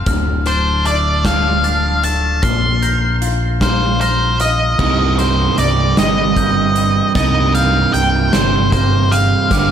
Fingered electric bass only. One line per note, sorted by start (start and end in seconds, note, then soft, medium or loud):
0.07 2.39 D1 medium
2.43 4.75 A#1 medium
4.79 5.47 C2 medium
5.58 5.92 C2 medium
5.98 6.99 G1 medium
7.15 7.83 C2 medium
7.94 8.28 C2 medium
8.33 9.34 G1 medium
9.51 9.71 G1 medium